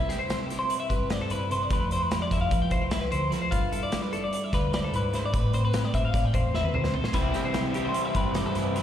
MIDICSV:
0, 0, Header, 1, 6, 480
1, 0, Start_track
1, 0, Key_signature, 0, "major"
1, 0, Tempo, 402955
1, 2036, Time_signature, 9, 3, 24, 8
1, 10515, End_track
2, 0, Start_track
2, 0, Title_t, "Clean electric guitar"
2, 0, Program_c, 0, 27
2, 109, Note_on_c, 0, 67, 76
2, 226, Note_on_c, 0, 72, 69
2, 231, Note_off_c, 0, 67, 0
2, 470, Note_off_c, 0, 72, 0
2, 470, Note_on_c, 0, 69, 69
2, 574, Note_off_c, 0, 69, 0
2, 574, Note_on_c, 0, 67, 67
2, 701, Note_on_c, 0, 72, 71
2, 704, Note_off_c, 0, 67, 0
2, 946, Note_off_c, 0, 72, 0
2, 950, Note_on_c, 0, 76, 67
2, 1063, Note_off_c, 0, 76, 0
2, 1067, Note_on_c, 0, 71, 73
2, 1324, Note_off_c, 0, 71, 0
2, 1324, Note_on_c, 0, 74, 80
2, 1440, Note_off_c, 0, 74, 0
2, 1446, Note_on_c, 0, 69, 71
2, 1561, Note_off_c, 0, 69, 0
2, 1564, Note_on_c, 0, 71, 73
2, 1800, Note_off_c, 0, 71, 0
2, 1811, Note_on_c, 0, 72, 74
2, 1938, Note_off_c, 0, 72, 0
2, 1938, Note_on_c, 0, 74, 67
2, 2047, Note_off_c, 0, 74, 0
2, 2061, Note_on_c, 0, 71, 85
2, 2287, Note_off_c, 0, 71, 0
2, 2292, Note_on_c, 0, 72, 79
2, 2410, Note_off_c, 0, 72, 0
2, 2410, Note_on_c, 0, 71, 74
2, 2641, Note_off_c, 0, 71, 0
2, 2646, Note_on_c, 0, 74, 70
2, 2761, Note_off_c, 0, 74, 0
2, 2768, Note_on_c, 0, 76, 72
2, 2868, Note_off_c, 0, 76, 0
2, 2873, Note_on_c, 0, 77, 68
2, 3115, Note_off_c, 0, 77, 0
2, 3120, Note_on_c, 0, 79, 70
2, 3235, Note_on_c, 0, 72, 78
2, 3238, Note_off_c, 0, 79, 0
2, 3471, Note_off_c, 0, 72, 0
2, 3471, Note_on_c, 0, 76, 83
2, 3582, Note_off_c, 0, 76, 0
2, 3587, Note_on_c, 0, 71, 72
2, 3707, Note_off_c, 0, 71, 0
2, 3712, Note_on_c, 0, 72, 73
2, 3958, Note_off_c, 0, 72, 0
2, 3958, Note_on_c, 0, 69, 75
2, 4065, Note_off_c, 0, 69, 0
2, 4070, Note_on_c, 0, 72, 71
2, 4182, Note_on_c, 0, 65, 86
2, 4193, Note_off_c, 0, 72, 0
2, 4429, Note_off_c, 0, 65, 0
2, 4435, Note_on_c, 0, 69, 70
2, 4556, Note_off_c, 0, 69, 0
2, 4561, Note_on_c, 0, 74, 73
2, 4793, Note_off_c, 0, 74, 0
2, 4793, Note_on_c, 0, 71, 70
2, 4915, Note_off_c, 0, 71, 0
2, 4917, Note_on_c, 0, 69, 76
2, 5037, Note_off_c, 0, 69, 0
2, 5049, Note_on_c, 0, 74, 72
2, 5289, Note_off_c, 0, 74, 0
2, 5289, Note_on_c, 0, 76, 72
2, 5402, Note_off_c, 0, 76, 0
2, 5410, Note_on_c, 0, 71, 82
2, 5640, Note_off_c, 0, 71, 0
2, 5645, Note_on_c, 0, 74, 84
2, 5761, Note_off_c, 0, 74, 0
2, 5770, Note_on_c, 0, 69, 72
2, 5883, Note_off_c, 0, 69, 0
2, 5905, Note_on_c, 0, 71, 73
2, 6131, Note_off_c, 0, 71, 0
2, 6136, Note_on_c, 0, 72, 79
2, 6246, Note_off_c, 0, 72, 0
2, 6261, Note_on_c, 0, 74, 72
2, 6382, Note_off_c, 0, 74, 0
2, 6382, Note_on_c, 0, 71, 91
2, 6597, Note_off_c, 0, 71, 0
2, 6602, Note_on_c, 0, 72, 77
2, 6719, Note_off_c, 0, 72, 0
2, 6728, Note_on_c, 0, 71, 70
2, 6967, Note_off_c, 0, 71, 0
2, 6967, Note_on_c, 0, 74, 70
2, 7080, Note_off_c, 0, 74, 0
2, 7084, Note_on_c, 0, 76, 72
2, 7200, Note_off_c, 0, 76, 0
2, 7205, Note_on_c, 0, 77, 66
2, 7446, Note_off_c, 0, 77, 0
2, 7446, Note_on_c, 0, 79, 72
2, 7559, Note_on_c, 0, 72, 82
2, 7560, Note_off_c, 0, 79, 0
2, 7796, Note_off_c, 0, 72, 0
2, 7804, Note_on_c, 0, 76, 83
2, 7919, Note_off_c, 0, 76, 0
2, 7919, Note_on_c, 0, 71, 70
2, 8032, Note_off_c, 0, 71, 0
2, 8036, Note_on_c, 0, 72, 71
2, 8282, Note_off_c, 0, 72, 0
2, 8282, Note_on_c, 0, 69, 75
2, 8390, Note_off_c, 0, 69, 0
2, 8390, Note_on_c, 0, 72, 64
2, 8511, Note_off_c, 0, 72, 0
2, 8511, Note_on_c, 0, 64, 88
2, 8752, Note_off_c, 0, 64, 0
2, 8754, Note_on_c, 0, 67, 77
2, 8873, Note_on_c, 0, 72, 69
2, 8874, Note_off_c, 0, 67, 0
2, 9112, Note_off_c, 0, 72, 0
2, 9112, Note_on_c, 0, 69, 67
2, 9230, Note_off_c, 0, 69, 0
2, 9235, Note_on_c, 0, 67, 78
2, 9352, Note_on_c, 0, 72, 71
2, 9354, Note_off_c, 0, 67, 0
2, 9592, Note_off_c, 0, 72, 0
2, 9592, Note_on_c, 0, 76, 74
2, 9712, Note_off_c, 0, 76, 0
2, 9723, Note_on_c, 0, 71, 80
2, 9953, Note_off_c, 0, 71, 0
2, 9953, Note_on_c, 0, 74, 85
2, 10072, Note_off_c, 0, 74, 0
2, 10079, Note_on_c, 0, 69, 75
2, 10185, Note_off_c, 0, 69, 0
2, 10185, Note_on_c, 0, 71, 72
2, 10432, Note_off_c, 0, 71, 0
2, 10432, Note_on_c, 0, 72, 77
2, 10515, Note_off_c, 0, 72, 0
2, 10515, End_track
3, 0, Start_track
3, 0, Title_t, "Clean electric guitar"
3, 0, Program_c, 1, 27
3, 0, Note_on_c, 1, 48, 74
3, 0, Note_on_c, 1, 55, 56
3, 0, Note_on_c, 1, 71, 68
3, 111, Note_on_c, 1, 64, 56
3, 362, Note_on_c, 1, 67, 58
3, 597, Note_off_c, 1, 64, 0
3, 601, Note_on_c, 1, 64, 59
3, 834, Note_off_c, 1, 71, 0
3, 839, Note_on_c, 1, 71, 63
3, 1073, Note_off_c, 1, 67, 0
3, 1078, Note_on_c, 1, 67, 58
3, 1321, Note_off_c, 1, 71, 0
3, 1326, Note_on_c, 1, 72, 62
3, 1567, Note_off_c, 1, 64, 0
3, 1572, Note_on_c, 1, 64, 57
3, 1781, Note_off_c, 1, 48, 0
3, 1795, Note_on_c, 1, 48, 73
3, 1801, Note_off_c, 1, 72, 0
3, 1810, Note_on_c, 1, 71, 57
3, 2032, Note_off_c, 1, 55, 0
3, 2036, Note_off_c, 1, 48, 0
3, 2041, Note_on_c, 1, 53, 76
3, 2053, Note_on_c, 1, 57, 66
3, 2059, Note_off_c, 1, 64, 0
3, 2064, Note_on_c, 1, 64, 58
3, 2069, Note_off_c, 1, 67, 0
3, 2073, Note_on_c, 1, 67, 62
3, 2076, Note_off_c, 1, 71, 0
3, 2081, Note_on_c, 1, 71, 67
3, 2282, Note_off_c, 1, 64, 0
3, 2287, Note_on_c, 1, 64, 59
3, 2531, Note_off_c, 1, 67, 0
3, 2535, Note_on_c, 1, 67, 61
3, 2761, Note_off_c, 1, 64, 0
3, 2765, Note_on_c, 1, 64, 57
3, 2997, Note_off_c, 1, 71, 0
3, 3002, Note_on_c, 1, 71, 63
3, 3233, Note_off_c, 1, 67, 0
3, 3237, Note_off_c, 1, 64, 0
3, 3237, Note_on_c, 1, 64, 58
3, 3355, Note_off_c, 1, 64, 0
3, 3355, Note_on_c, 1, 67, 54
3, 3470, Note_off_c, 1, 71, 0
3, 3475, Note_on_c, 1, 71, 64
3, 3702, Note_on_c, 1, 64, 53
3, 3918, Note_off_c, 1, 53, 0
3, 3931, Note_on_c, 1, 53, 69
3, 3936, Note_off_c, 1, 71, 0
3, 3941, Note_on_c, 1, 71, 50
3, 4156, Note_off_c, 1, 53, 0
3, 4171, Note_on_c, 1, 43, 75
3, 4177, Note_off_c, 1, 71, 0
3, 4182, Note_on_c, 1, 71, 72
3, 4196, Note_off_c, 1, 67, 0
3, 4206, Note_off_c, 1, 57, 0
3, 4430, Note_off_c, 1, 64, 0
3, 4435, Note_on_c, 1, 64, 61
3, 4682, Note_on_c, 1, 65, 60
3, 4929, Note_off_c, 1, 64, 0
3, 4934, Note_on_c, 1, 64, 56
3, 5174, Note_off_c, 1, 71, 0
3, 5179, Note_on_c, 1, 74, 66
3, 5399, Note_off_c, 1, 65, 0
3, 5417, Note_on_c, 1, 65, 59
3, 5644, Note_off_c, 1, 74, 0
3, 5648, Note_on_c, 1, 72, 65
3, 5885, Note_off_c, 1, 64, 0
3, 5890, Note_on_c, 1, 64, 56
3, 6093, Note_off_c, 1, 43, 0
3, 6105, Note_on_c, 1, 43, 71
3, 6110, Note_off_c, 1, 72, 0
3, 6115, Note_on_c, 1, 71, 49
3, 6337, Note_off_c, 1, 65, 0
3, 6340, Note_off_c, 1, 43, 0
3, 6345, Note_on_c, 1, 45, 76
3, 6350, Note_off_c, 1, 71, 0
3, 6355, Note_on_c, 1, 71, 70
3, 6591, Note_off_c, 1, 64, 0
3, 6596, Note_on_c, 1, 60, 59
3, 6835, Note_on_c, 1, 67, 61
3, 7085, Note_off_c, 1, 60, 0
3, 7089, Note_on_c, 1, 60, 58
3, 7317, Note_off_c, 1, 71, 0
3, 7322, Note_on_c, 1, 74, 65
3, 7553, Note_off_c, 1, 67, 0
3, 7558, Note_on_c, 1, 67, 58
3, 7794, Note_off_c, 1, 74, 0
3, 7799, Note_on_c, 1, 71, 62
3, 8045, Note_off_c, 1, 60, 0
3, 8049, Note_on_c, 1, 60, 59
3, 8255, Note_off_c, 1, 45, 0
3, 8269, Note_on_c, 1, 45, 69
3, 8277, Note_off_c, 1, 71, 0
3, 8281, Note_on_c, 1, 72, 55
3, 8482, Note_off_c, 1, 45, 0
3, 8509, Note_on_c, 1, 48, 73
3, 8510, Note_off_c, 1, 72, 0
3, 8515, Note_on_c, 1, 71, 70
3, 8757, Note_off_c, 1, 60, 0
3, 8762, Note_on_c, 1, 64, 62
3, 8995, Note_off_c, 1, 67, 0
3, 9000, Note_on_c, 1, 67, 62
3, 9243, Note_off_c, 1, 64, 0
3, 9248, Note_on_c, 1, 64, 58
3, 9478, Note_off_c, 1, 71, 0
3, 9483, Note_on_c, 1, 71, 67
3, 9735, Note_off_c, 1, 67, 0
3, 9739, Note_on_c, 1, 67, 60
3, 9974, Note_off_c, 1, 71, 0
3, 9979, Note_on_c, 1, 72, 65
3, 10206, Note_off_c, 1, 64, 0
3, 10210, Note_on_c, 1, 64, 59
3, 10412, Note_off_c, 1, 48, 0
3, 10427, Note_on_c, 1, 48, 72
3, 10436, Note_off_c, 1, 72, 0
3, 10441, Note_on_c, 1, 71, 58
3, 10515, Note_off_c, 1, 48, 0
3, 10515, Note_off_c, 1, 64, 0
3, 10515, Note_off_c, 1, 67, 0
3, 10515, Note_off_c, 1, 71, 0
3, 10515, End_track
4, 0, Start_track
4, 0, Title_t, "Overdriven electric guitar"
4, 0, Program_c, 2, 29
4, 8503, Note_on_c, 2, 48, 90
4, 8513, Note_on_c, 2, 52, 94
4, 8527, Note_on_c, 2, 55, 88
4, 8538, Note_on_c, 2, 60, 97
4, 8549, Note_on_c, 2, 64, 91
4, 9213, Note_off_c, 2, 48, 0
4, 9215, Note_off_c, 2, 64, 0
4, 9220, Note_on_c, 2, 64, 80
4, 9231, Note_off_c, 2, 60, 0
4, 9236, Note_on_c, 2, 60, 73
4, 9237, Note_off_c, 2, 55, 0
4, 9242, Note_on_c, 2, 55, 77
4, 9248, Note_off_c, 2, 52, 0
4, 9253, Note_on_c, 2, 52, 64
4, 9264, Note_on_c, 2, 48, 62
4, 10515, Note_off_c, 2, 48, 0
4, 10515, Note_off_c, 2, 52, 0
4, 10515, Note_off_c, 2, 55, 0
4, 10515, Note_off_c, 2, 60, 0
4, 10515, Note_off_c, 2, 64, 0
4, 10515, End_track
5, 0, Start_track
5, 0, Title_t, "Fingered electric bass"
5, 0, Program_c, 3, 33
5, 1071, Note_on_c, 3, 43, 81
5, 1517, Note_off_c, 3, 43, 0
5, 1547, Note_on_c, 3, 43, 78
5, 2034, Note_off_c, 3, 43, 0
5, 2034, Note_on_c, 3, 41, 97
5, 2708, Note_off_c, 3, 41, 0
5, 2755, Note_on_c, 3, 41, 87
5, 2978, Note_off_c, 3, 41, 0
5, 2991, Note_on_c, 3, 53, 87
5, 3215, Note_off_c, 3, 53, 0
5, 3231, Note_on_c, 3, 36, 84
5, 3677, Note_off_c, 3, 36, 0
5, 3713, Note_on_c, 3, 38, 87
5, 3937, Note_off_c, 3, 38, 0
5, 4194, Note_on_c, 3, 43, 100
5, 4417, Note_off_c, 3, 43, 0
5, 5396, Note_on_c, 3, 38, 88
5, 5839, Note_off_c, 3, 38, 0
5, 5876, Note_on_c, 3, 44, 82
5, 6354, Note_off_c, 3, 44, 0
5, 6354, Note_on_c, 3, 45, 109
5, 7027, Note_off_c, 3, 45, 0
5, 7071, Note_on_c, 3, 45, 97
5, 7294, Note_off_c, 3, 45, 0
5, 7315, Note_on_c, 3, 45, 84
5, 7536, Note_off_c, 3, 45, 0
5, 7549, Note_on_c, 3, 40, 81
5, 7994, Note_off_c, 3, 40, 0
5, 8027, Note_on_c, 3, 38, 84
5, 8252, Note_off_c, 3, 38, 0
5, 8500, Note_on_c, 3, 36, 95
5, 8728, Note_off_c, 3, 36, 0
5, 9708, Note_on_c, 3, 43, 81
5, 10153, Note_off_c, 3, 43, 0
5, 10185, Note_on_c, 3, 43, 82
5, 10515, Note_off_c, 3, 43, 0
5, 10515, End_track
6, 0, Start_track
6, 0, Title_t, "Drums"
6, 117, Note_on_c, 9, 42, 67
6, 123, Note_on_c, 9, 38, 31
6, 236, Note_off_c, 9, 42, 0
6, 242, Note_off_c, 9, 38, 0
6, 356, Note_on_c, 9, 42, 92
6, 362, Note_on_c, 9, 38, 105
6, 475, Note_off_c, 9, 42, 0
6, 481, Note_off_c, 9, 38, 0
6, 600, Note_on_c, 9, 42, 69
6, 606, Note_on_c, 9, 38, 32
6, 720, Note_off_c, 9, 42, 0
6, 726, Note_off_c, 9, 38, 0
6, 833, Note_on_c, 9, 42, 89
6, 952, Note_off_c, 9, 42, 0
6, 1072, Note_on_c, 9, 36, 72
6, 1077, Note_on_c, 9, 42, 59
6, 1191, Note_off_c, 9, 36, 0
6, 1196, Note_off_c, 9, 42, 0
6, 1310, Note_on_c, 9, 42, 80
6, 1316, Note_on_c, 9, 38, 102
6, 1429, Note_off_c, 9, 42, 0
6, 1435, Note_off_c, 9, 38, 0
6, 1551, Note_on_c, 9, 42, 65
6, 1670, Note_off_c, 9, 42, 0
6, 1800, Note_on_c, 9, 42, 65
6, 1919, Note_off_c, 9, 42, 0
6, 2030, Note_on_c, 9, 42, 85
6, 2031, Note_on_c, 9, 36, 105
6, 2149, Note_off_c, 9, 42, 0
6, 2151, Note_off_c, 9, 36, 0
6, 2276, Note_on_c, 9, 42, 64
6, 2395, Note_off_c, 9, 42, 0
6, 2516, Note_on_c, 9, 42, 90
6, 2522, Note_on_c, 9, 38, 108
6, 2635, Note_off_c, 9, 42, 0
6, 2641, Note_off_c, 9, 38, 0
6, 2754, Note_on_c, 9, 36, 79
6, 2757, Note_on_c, 9, 42, 69
6, 2763, Note_on_c, 9, 38, 32
6, 2873, Note_off_c, 9, 36, 0
6, 2876, Note_off_c, 9, 42, 0
6, 2882, Note_off_c, 9, 38, 0
6, 2993, Note_on_c, 9, 36, 97
6, 2993, Note_on_c, 9, 42, 91
6, 3112, Note_off_c, 9, 36, 0
6, 3112, Note_off_c, 9, 42, 0
6, 3226, Note_on_c, 9, 42, 62
6, 3231, Note_on_c, 9, 36, 68
6, 3345, Note_off_c, 9, 42, 0
6, 3350, Note_off_c, 9, 36, 0
6, 3466, Note_on_c, 9, 42, 86
6, 3472, Note_on_c, 9, 38, 107
6, 3585, Note_off_c, 9, 42, 0
6, 3591, Note_off_c, 9, 38, 0
6, 3714, Note_on_c, 9, 42, 73
6, 3833, Note_off_c, 9, 42, 0
6, 3955, Note_on_c, 9, 42, 72
6, 3961, Note_on_c, 9, 38, 32
6, 4074, Note_off_c, 9, 42, 0
6, 4080, Note_off_c, 9, 38, 0
6, 4193, Note_on_c, 9, 42, 97
6, 4195, Note_on_c, 9, 36, 101
6, 4312, Note_off_c, 9, 42, 0
6, 4314, Note_off_c, 9, 36, 0
6, 4439, Note_on_c, 9, 42, 66
6, 4558, Note_off_c, 9, 42, 0
6, 4670, Note_on_c, 9, 42, 91
6, 4676, Note_on_c, 9, 38, 102
6, 4789, Note_off_c, 9, 42, 0
6, 4795, Note_off_c, 9, 38, 0
6, 4916, Note_on_c, 9, 42, 68
6, 5035, Note_off_c, 9, 42, 0
6, 5156, Note_on_c, 9, 42, 88
6, 5275, Note_off_c, 9, 42, 0
6, 5394, Note_on_c, 9, 42, 64
6, 5396, Note_on_c, 9, 36, 75
6, 5400, Note_on_c, 9, 38, 34
6, 5513, Note_off_c, 9, 42, 0
6, 5515, Note_off_c, 9, 36, 0
6, 5519, Note_off_c, 9, 38, 0
6, 5640, Note_on_c, 9, 42, 86
6, 5646, Note_on_c, 9, 38, 103
6, 5759, Note_off_c, 9, 42, 0
6, 5765, Note_off_c, 9, 38, 0
6, 5880, Note_on_c, 9, 42, 66
6, 5999, Note_off_c, 9, 42, 0
6, 6116, Note_on_c, 9, 42, 64
6, 6122, Note_on_c, 9, 38, 32
6, 6235, Note_off_c, 9, 42, 0
6, 6241, Note_off_c, 9, 38, 0
6, 6357, Note_on_c, 9, 36, 105
6, 6359, Note_on_c, 9, 42, 86
6, 6476, Note_off_c, 9, 36, 0
6, 6478, Note_off_c, 9, 42, 0
6, 6592, Note_on_c, 9, 42, 63
6, 6711, Note_off_c, 9, 42, 0
6, 6832, Note_on_c, 9, 42, 90
6, 6838, Note_on_c, 9, 38, 107
6, 6951, Note_off_c, 9, 42, 0
6, 6957, Note_off_c, 9, 38, 0
6, 7074, Note_on_c, 9, 36, 72
6, 7076, Note_on_c, 9, 42, 67
6, 7194, Note_off_c, 9, 36, 0
6, 7195, Note_off_c, 9, 42, 0
6, 7313, Note_on_c, 9, 36, 98
6, 7314, Note_on_c, 9, 42, 93
6, 7320, Note_on_c, 9, 38, 33
6, 7432, Note_off_c, 9, 36, 0
6, 7433, Note_off_c, 9, 42, 0
6, 7439, Note_off_c, 9, 38, 0
6, 7551, Note_on_c, 9, 36, 74
6, 7551, Note_on_c, 9, 42, 69
6, 7670, Note_off_c, 9, 36, 0
6, 7671, Note_off_c, 9, 42, 0
6, 7795, Note_on_c, 9, 38, 55
6, 7903, Note_on_c, 9, 48, 55
6, 7914, Note_off_c, 9, 38, 0
6, 8022, Note_off_c, 9, 48, 0
6, 8027, Note_on_c, 9, 47, 75
6, 8146, Note_off_c, 9, 47, 0
6, 8149, Note_on_c, 9, 38, 69
6, 8264, Note_on_c, 9, 43, 91
6, 8268, Note_off_c, 9, 38, 0
6, 8383, Note_off_c, 9, 43, 0
6, 8386, Note_on_c, 9, 38, 83
6, 8498, Note_on_c, 9, 42, 94
6, 8504, Note_on_c, 9, 36, 108
6, 8505, Note_off_c, 9, 38, 0
6, 8617, Note_off_c, 9, 42, 0
6, 8623, Note_off_c, 9, 36, 0
6, 8744, Note_on_c, 9, 42, 65
6, 8750, Note_on_c, 9, 38, 33
6, 8863, Note_off_c, 9, 42, 0
6, 8869, Note_off_c, 9, 38, 0
6, 8981, Note_on_c, 9, 42, 85
6, 8987, Note_on_c, 9, 38, 111
6, 9100, Note_off_c, 9, 42, 0
6, 9106, Note_off_c, 9, 38, 0
6, 9223, Note_on_c, 9, 42, 64
6, 9342, Note_off_c, 9, 42, 0
6, 9463, Note_on_c, 9, 42, 89
6, 9582, Note_off_c, 9, 42, 0
6, 9703, Note_on_c, 9, 42, 61
6, 9706, Note_on_c, 9, 36, 78
6, 9823, Note_off_c, 9, 42, 0
6, 9825, Note_off_c, 9, 36, 0
6, 9942, Note_on_c, 9, 42, 87
6, 9948, Note_on_c, 9, 38, 106
6, 10061, Note_off_c, 9, 42, 0
6, 10067, Note_off_c, 9, 38, 0
6, 10187, Note_on_c, 9, 42, 65
6, 10193, Note_on_c, 9, 38, 35
6, 10306, Note_off_c, 9, 42, 0
6, 10312, Note_off_c, 9, 38, 0
6, 10431, Note_on_c, 9, 42, 62
6, 10437, Note_on_c, 9, 38, 35
6, 10515, Note_off_c, 9, 38, 0
6, 10515, Note_off_c, 9, 42, 0
6, 10515, End_track
0, 0, End_of_file